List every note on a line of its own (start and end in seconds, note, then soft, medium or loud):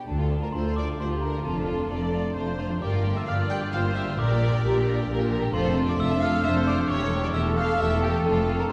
0.00 0.30 D4 soft
0.07 0.48 D2 medium
0.07 0.49 D2 medium
0.07 1.48 D3 soft
0.07 0.18 D4 soft
0.07 0.42 A4 medium
0.07 0.40 A5 medium
0.18 1.33 A3 soft
0.18 0.30 F4 soft
0.30 0.42 D4 soft
0.30 1.21 D4 soft
0.42 0.53 F4 soft
0.42 1.89 F4 soft
0.42 0.47 A#4 medium
0.42 0.53 A#5 medium
0.52 0.94 D2 medium
0.52 0.71 A3 soft
0.52 0.64 D4 soft
0.52 0.71 F4 soft
0.52 0.97 A4 medium
0.52 1.10 A4 soft
0.52 0.77 C5 medium
0.52 0.75 C6 medium
0.64 0.76 F4 soft
0.64 2.12 D5 soft
0.74 0.87 D4 soft
0.74 0.85 D5 medium
0.74 0.99 F5 soft
0.74 0.98 D6 medium
0.87 0.99 F4 soft
0.87 2.84 A5 soft
0.97 1.39 D2 medium
0.97 1.40 D2 medium
0.97 1.16 A3 soft
0.97 1.09 D4 medium
0.97 1.16 F4 medium
0.97 1.44 G4 medium
0.97 1.09 C5 medium
0.97 2.24 F5 soft
0.97 1.21 C6 medium
1.10 1.22 F4 soft
1.10 2.00 A4 soft
1.21 1.78 D4 soft
1.21 1.34 D4 soft
1.21 1.45 A#4 medium
1.21 1.43 A#5 medium
1.34 1.68 A3 soft
1.34 1.43 F4 soft
1.44 1.85 F1 medium
1.44 1.85 F2 medium
1.44 2.84 F2 medium
1.44 1.55 F4 soft
1.44 1.89 F4 medium
1.44 2.34 A4 medium
1.44 2.32 A5 medium
1.56 2.70 F3 soft
1.56 1.68 D4 soft
1.67 2.58 A3 soft
1.67 1.79 F4 medium
1.78 1.90 D4 soft
1.78 3.15 D4 soft
1.89 2.30 F1 medium
1.89 2.30 F2 medium
1.89 2.08 A3 soft
1.89 2.08 D4 soft
1.89 2.00 F4 soft
1.89 2.47 F4 soft
1.89 2.35 D5 medium
2.02 2.13 D4 soft
2.02 2.83 A4 soft
2.13 2.24 F4 medium
2.13 2.35 D5 soft
2.24 2.36 D4 soft
2.24 3.60 F5 soft
2.35 2.76 F1 medium
2.35 2.76 F2 medium
2.35 2.54 A3 soft
2.35 2.53 D4 medium
2.35 2.46 F4 soft
2.35 2.80 C5 medium
2.35 3.48 D5 soft
2.47 2.58 D4 soft
2.47 3.26 F4 soft
2.58 2.83 A3 soft
2.58 2.70 F4 medium
2.58 2.66 C5 medium
2.58 2.80 C6 medium
2.70 4.20 F3 soft
2.70 2.82 D4 soft
2.80 3.22 G1 medium
2.80 3.22 G2 medium
2.80 4.20 G2 medium
2.80 2.92 G4 medium
2.80 3.27 A#4 medium
2.80 3.15 D5 medium
2.80 3.14 D6 medium
2.92 4.06 D3 soft
2.92 3.04 F4 soft
3.04 3.94 A#3 soft
3.04 3.16 G4 medium
3.15 4.50 D4 soft
3.15 3.27 F4 medium
3.15 3.27 E5 medium
3.15 3.27 E6 medium
3.25 3.68 G1 medium
3.25 3.67 G2 medium
3.25 3.83 F4 soft
3.25 3.38 G4 soft
3.25 3.73 D5 medium
3.25 3.33 F5 medium
3.25 3.49 F6 medium
3.30 3.46 A#3 medium
3.30 3.46 F4 medium
3.38 3.51 F4 soft
3.38 4.73 A#4 soft
3.49 3.62 G4 medium
3.49 3.72 D5 medium
3.49 3.57 G5 medium
3.49 3.72 G6 medium
3.61 3.73 F4 soft
3.61 4.20 F5 soft
3.71 4.13 G1 medium
3.71 4.13 G2 medium
3.71 3.91 A#3 medium
3.71 3.91 F4 medium
3.71 3.84 G4 medium
3.71 4.18 C5 medium
3.71 4.85 D5 medium
3.71 3.79 F5 medium
3.71 3.95 F6 medium
3.84 4.20 F4 medium
3.84 3.96 F4 soft
3.95 4.39 A#3 medium
3.95 4.07 G4 medium
3.95 4.03 E5 medium
3.95 4.17 E6 medium
4.07 4.20 D3 soft
4.07 4.19 F4 medium
4.17 4.58 A#1 medium
4.17 5.55 A#2 medium
4.17 4.58 A#2 medium
4.17 4.29 A#4 medium
4.17 4.64 A#4 medium
4.17 5.06 D5 medium
4.17 5.05 D6 medium
4.29 5.41 G3 medium
4.29 4.41 G4 medium
4.40 5.30 A#3 medium
4.40 4.52 A#4 medium
4.51 5.87 D4 soft
4.51 4.64 G4 medium
4.62 5.03 A#1 medium
4.62 5.03 A#2 medium
4.62 4.81 A#3 medium
4.62 5.19 G4 medium
4.62 5.09 G4 medium
4.62 4.81 G4 medium
4.62 4.75 A#4 medium
4.74 4.86 G4 soft
4.74 5.55 A#4 medium
4.86 4.98 A#4 medium
4.86 5.08 D5 medium
4.97 5.09 G4 soft
4.97 5.55 G5 medium
5.08 5.48 A#1 medium
5.08 5.48 A#2 medium
5.08 5.26 A#3 medium
5.08 5.25 G4 medium
5.08 5.53 A#4 medium
5.08 5.20 A#4 medium
5.08 6.21 D5 medium
5.20 5.31 G4 medium
5.20 5.56 G4 medium
5.31 5.55 A#3 medium
5.31 5.43 A#4 medium
5.42 5.55 G3 medium
5.42 5.53 G4 medium
5.53 5.93 F1 medium
5.53 5.93 F2 medium
5.53 6.91 F2 medium
5.53 5.64 F4 medium
5.53 5.98 A4 medium
5.53 5.85 C5 medium
5.53 5.85 C6 medium
5.64 6.76 F3 medium
5.64 5.77 A4 medium
5.76 6.64 A3 medium
5.76 5.88 F4 medium
5.87 6.10 D4 medium
5.87 6.00 A4 medium
5.87 5.98 D5 medium
5.87 5.99 D6 medium
5.98 6.39 F1 medium
5.98 6.39 F2 medium
5.98 6.15 A3 medium
5.98 6.16 D4 medium
5.98 6.11 F4 medium
5.98 6.53 A4 medium
5.98 6.43 A4 medium
5.98 6.21 E5 medium
5.98 6.21 E6 loud
6.11 6.91 D4 medium
6.11 6.23 A4 medium
6.21 6.33 F4 medium
6.21 6.43 D5 medium
6.21 6.44 F5 medium
6.21 6.43 F6 loud
6.33 6.45 A4 medium
6.33 8.72 A5 medium
6.43 6.83 F1 medium
6.43 6.84 F2 medium
6.43 6.60 A3 medium
6.43 6.60 D4 medium
6.43 6.56 F4 medium
6.43 6.88 C5 medium
6.43 6.91 D5 medium
6.43 6.52 E5 medium
6.43 6.65 E6 loud
6.54 7.45 A4 medium
6.54 6.67 A4 medium
6.66 7.11 A3 medium
6.66 6.79 F4 medium
6.66 6.75 D5 medium
6.66 6.88 D6 medium
6.77 6.90 F3 medium
6.77 6.90 A4 medium
6.88 7.29 E1 medium
6.88 7.28 E2 medium
6.88 8.26 E2 medium
6.88 7.01 G4 medium
6.88 7.22 C#5 medium
6.88 7.34 C#5 medium
6.88 7.21 C#6 medium
7.00 8.13 E3 medium
7.00 7.13 A4 medium
7.12 8.02 A3 medium
7.12 7.24 G4 medium
7.23 8.27 E4 soft
7.23 7.35 A4 medium
7.23 7.28 D5 medium
7.23 7.34 D6 medium
7.33 7.74 E1 medium
7.33 7.73 E2 medium
7.33 7.52 A3 medium
7.33 7.52 E4 medium
7.33 7.45 G4 medium
7.33 8.68 A4 medium
7.33 7.42 E5 medium
7.33 7.55 E6 loud
7.46 8.72 A4 medium
7.46 7.58 A4 medium
7.57 7.69 G4 medium
7.57 7.79 E5 medium
7.57 7.79 F5 medium
7.57 7.78 F6 loud
7.69 7.80 A4 medium
7.69 8.27 G5 medium
7.78 8.20 E1 medium
7.78 8.19 E2 medium
7.78 7.98 A3 medium
7.78 7.91 G4 medium
7.78 8.01 E5 medium
7.78 8.01 E6 medium
7.83 7.98 E4 medium
7.92 8.27 G4 medium
7.92 8.03 A4 medium
8.02 8.47 A3 medium
8.02 8.25 G4 medium
8.02 8.14 G4 medium
8.02 8.23 G5 medium
8.15 8.27 E3 soft
8.15 8.26 A4 medium
8.24 8.65 F1 medium
8.24 8.65 F2 medium
8.24 8.72 F2 medium
8.24 8.41 A3 medium
8.24 8.42 D4 medium
8.24 8.37 F4 medium
8.24 8.58 A4 medium
8.24 8.57 A5 medium
8.37 8.72 F3 medium
8.37 8.49 A4 medium
8.49 8.72 A3 medium
8.49 8.60 F4 medium
8.59 8.72 D4 soft
8.59 8.71 A4 medium
8.59 8.64 A#4 medium
8.59 8.70 A#5 medium